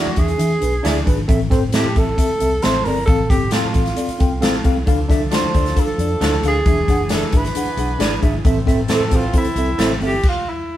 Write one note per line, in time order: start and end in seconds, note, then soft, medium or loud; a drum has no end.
0.00 0.13 E3 medium
0.00 0.20 F#4 medium
0.06 muted fingered electric bass stroke soft
0.16 0.34 E2 medium
0.16 0.28 D4 medium
0.16 0.28 G#4 medium
0.16 1.07 G#4 loud
0.16 0.29 E5 medium
0.16 kick medium
0.16 closed hi-hat medium
0.28 closed hi-hat soft
0.38 0.56 E3 loud
0.38 0.50 D4 medium
0.38 0.50 G#4 medium
0.38 0.51 E5 medium
0.38 closed hi-hat medium
0.60 0.79 B1 medium
0.60 0.72 D4 medium
0.60 0.73 G#4 medium
0.60 0.73 B4 medium
0.60 closed hi-hat medium
0.83 1.01 D2 medium
0.83 0.95 D4 loud
0.83 0.96 E4 medium
0.83 0.96 G#4 loud
0.83 0.96 G#4 medium
0.83 0.97 D5 medium
0.83 0.96 E5 loud
0.83 snare medium
0.83 closed hi-hat medium
1.05 1.23 G#1 loud
1.05 1.17 D4 loud
1.05 1.18 G#4 medium
1.05 1.18 B4 loud
1.05 kick medium
1.05 closed hi-hat medium
1.28 1.46 A1 loud
1.28 1.92 A2 medium
1.28 1.40 C4 loud
1.28 1.40 A4 loud
1.28 1.40 E5 loud
1.28 kick loud
1.28 closed hi-hat medium
1.50 1.68 G1 medium
1.50 1.62 C4 loud
1.50 1.62 A4 loud
1.50 1.63 C5 loud
1.50 kick medium
1.50 snare soft
1.50 closed hi-hat medium
1.72 1.84 C4 medium
1.72 1.86 C4 medium
1.72 1.86 E4 medium
1.72 1.99 G4 medium
1.72 1.85 A4 medium
1.72 1.86 A4 medium
1.72 1.85 E5 medium
1.72 snare loud
1.72 closed hi-hat medium
1.85 muted fingered electric bass stroke medium
1.95 2.13 A1 medium
1.95 2.07 C4 medium
1.95 2.08 A4 medium
1.95 2.65 A4 loud
1.95 2.08 E5 medium
1.95 kick medium
1.95 closed hi-hat medium
2.17 2.29 C4 medium
2.17 2.29 A4 medium
2.17 2.30 E5 medium
2.17 kick medium
2.17 closed hi-hat medium
2.30 muted fingered electric bass stroke soft
2.40 2.58 C2 medium
2.40 2.52 C4 medium
2.40 2.52 A4 medium
2.40 2.52 E5 medium
2.40 closed hi-hat medium
2.62 2.81 A1 medium
2.62 2.75 C4 medium
2.62 2.75 E4 medium
2.62 2.75 A4 medium
2.62 2.76 A4 loud
2.62 2.86 C5 loud
2.62 2.75 E5 loud
2.62 snare loud
2.62 closed hi-hat medium
2.85 3.03 G1 medium
2.85 2.97 C4 medium
2.85 2.97 A4 medium
2.85 3.05 A#4 loud
2.85 2.98 D5 medium
2.85 open hi-hat soft
3.06 3.25 A1 medium
3.06 3.71 A2 medium
3.06 3.19 C4 medium
3.06 3.31 A4 loud
3.06 3.20 A4 medium
3.06 3.20 F5 loud
3.06 kick loud
3.06 closed hi-hat medium
3.30 3.47 G1 loud
3.30 3.41 C4 medium
3.30 3.53 G4 medium
3.30 3.42 A4 medium
3.30 3.42 G5 loud
3.30 kick medium
3.30 snare soft
3.30 closed hi-hat medium
3.51 3.64 C4 medium
3.51 4.64 F4 medium
3.51 3.65 F4 medium
3.51 3.64 A4 medium
3.51 3.65 A4 medium
3.51 3.64 F5 medium
3.51 snare loud
3.51 closed hi-hat medium
3.64 muted fingered electric bass stroke soft
3.74 3.92 A1 medium
3.74 3.86 C4 medium
3.74 3.86 A4 medium
3.74 3.86 F5 medium
3.74 kick medium
3.74 closed hi-hat medium
3.86 snare soft
3.86 closed hi-hat soft
3.95 4.08 C4 medium
3.95 4.08 A4 medium
3.95 4.09 D5 medium
3.95 closed hi-hat medium
4.08 muted fingered electric bass stroke soft
4.08 closed hi-hat soft
4.19 4.41 C2 medium
4.19 4.31 C4 medium
4.19 4.31 A4 medium
4.19 4.32 G5 medium
4.19 kick medium
4.19 closed hi-hat medium
4.41 4.59 A1 medium
4.41 4.53 C4 loud
4.41 4.54 C4 medium
4.41 4.55 F4 medium
4.41 4.53 A4 loud
4.41 4.55 A4 medium
4.41 4.54 F5 loud
4.41 snare loud
4.41 closed hi-hat medium
4.64 4.82 C2 medium
4.64 4.76 C4 loud
4.64 4.76 A4 medium
4.64 4.76 F5 loud
4.64 kick medium
4.64 closed hi-hat medium
4.86 5.04 D2 medium
4.86 5.50 D3 medium
4.86 6.64 F3 medium
4.86 4.98 D4 loud
4.86 8.41 D4 medium
4.86 4.98 A4 loud
4.86 6.64 A4 medium
4.86 4.99 F5 loud
4.86 kick loud
4.86 closed hi-hat medium
5.09 5.26 C2 medium
5.09 5.20 D4 loud
5.09 5.21 A4 loud
5.09 5.21 E5 loud
5.09 kick medium
5.09 snare soft
5.09 closed hi-hat medium
5.31 5.43 D4 medium
5.31 5.44 F4 medium
5.31 5.43 A4 medium
5.31 5.44 A4 medium
5.31 5.82 C5 medium
5.31 5.43 D5 medium
5.31 snare loud
5.31 closed hi-hat medium
5.42 muted fingered electric bass stroke soft
5.54 5.71 D2 medium
5.54 5.66 D4 medium
5.54 5.66 A4 medium
5.54 5.66 D5 medium
5.54 kick medium
5.54 closed hi-hat medium
5.66 snare soft
5.66 closed hi-hat soft
5.75 5.87 D4 medium
5.75 5.88 A4 medium
5.75 5.88 F5 medium
5.75 kick medium
5.75 closed hi-hat medium
5.80 6.46 A4 medium
5.87 muted fingered electric bass stroke soft
5.98 6.15 F2 medium
5.98 6.10 D4 medium
5.98 6.10 A4 medium
5.98 6.11 D5 medium
5.98 closed hi-hat medium
6.21 6.38 D2 medium
6.21 6.33 D4 medium
6.21 6.33 F4 medium
6.21 6.33 A4 medium
6.21 6.34 A4 medium
6.21 6.33 C5 medium
6.21 snare loud
6.21 closed hi-hat medium
6.42 6.60 D2 medium
6.42 6.55 D4 medium
6.42 6.56 A4 medium
6.42 6.56 F5 medium
6.42 closed hi-hat medium
6.48 7.09 G#4 loud
6.64 6.83 E1 loud
6.64 10.20 E3 medium
6.64 7.30 E3 medium
6.64 6.78 D4 medium
6.64 8.42 G#4 medium
6.64 6.78 G#4 medium
6.64 6.78 E5 medium
6.64 kick loud
6.64 closed hi-hat medium
6.88 7.22 F#1 medium
6.88 7.00 D4 medium
6.88 7.00 G#4 medium
6.88 7.01 F#5 loud
6.88 kick medium
6.88 snare soft
6.88 closed hi-hat medium
7.09 7.22 D4 medium
7.09 7.23 G#4 medium
7.09 7.23 B4 medium
7.09 7.23 E5 medium
7.09 snare loud
7.09 closed hi-hat medium
7.15 7.38 A4 medium
7.32 7.50 G#1 medium
7.32 7.44 D4 medium
7.32 7.45 G#4 medium
7.32 7.46 E5 medium
7.32 kick loud
7.32 closed hi-hat medium
7.37 8.25 B4 loud
7.45 snare soft
7.45 closed hi-hat medium
7.55 7.67 D4 medium
7.55 7.67 G#4 medium
7.55 7.68 F#5 medium
7.55 closed hi-hat loud
7.65 muted fingered electric bass stroke soft
7.77 7.94 B1 medium
7.77 7.89 D4 medium
7.77 7.90 G#4 medium
7.77 7.90 F#5 medium
7.77 closed hi-hat medium
7.98 8.16 G#1 medium
7.98 8.11 D4 loud
7.98 8.12 D4 medium
7.98 8.11 G#4 loud
7.98 8.12 G#4 medium
7.98 8.13 B4 loud
7.98 8.12 D5 loud
7.98 snare loud
7.98 closed hi-hat medium
8.22 8.39 G#1 loud
8.22 8.34 D4 loud
8.22 8.34 G#4 medium
8.22 8.34 E5 loud
8.22 kick medium
8.22 closed hi-hat medium
8.45 8.62 A1 loud
8.45 9.09 A2 medium
8.45 8.56 C4 loud
8.45 10.23 C4 medium
8.45 10.22 A4 medium
8.45 8.57 A4 loud
8.45 8.57 E5 loud
8.45 kick loud
8.45 closed hi-hat medium
8.66 8.84 G1 medium
8.66 8.78 C4 loud
8.66 8.79 A4 loud
8.66 8.79 E5 loud
8.66 kick medium
8.66 snare soft
8.66 closed hi-hat medium
8.88 9.01 C4 medium
8.88 9.01 E4 medium
8.88 9.01 A4 medium
8.88 9.02 A4 medium
8.88 9.02 C5 medium
8.88 9.02 E5 medium
8.88 snare loud
8.88 closed hi-hat medium
8.94 9.17 A4 medium
8.99 muted fingered electric bass stroke soft
9.11 9.29 A1 medium
9.11 9.23 C4 medium
9.11 9.24 A4 medium
9.11 9.24 C5 medium
9.11 kick medium
9.11 closed hi-hat medium
9.15 9.36 F4 medium
9.33 9.45 C4 medium
9.33 9.46 A4 medium
9.33 9.46 C5 medium
9.33 kick medium
9.33 closed hi-hat medium
9.38 9.99 E4 loud
9.44 muted fingered electric bass stroke soft
9.44 closed hi-hat soft
9.56 9.73 C2 loud
9.56 9.69 C4 medium
9.56 9.69 A4 medium
9.56 9.69 E5 medium
9.56 closed hi-hat medium
9.78 9.96 A1 medium
9.78 9.91 C4 medium
9.78 9.91 E4 medium
9.78 9.91 A4 medium
9.78 9.91 C5 medium
9.78 9.92 E5 loud
9.78 snare loud
9.78 closed hi-hat medium
10.00 10.18 G1 loud
10.00 10.13 C4 medium
10.00 10.14 A4 medium
10.00 10.14 E5 loud
10.00 open hi-hat soft
10.06 10.25 G4 medium
10.23 kick loud
10.23 crash medium
10.29 10.51 F4 medium
10.50 10.77 E4 medium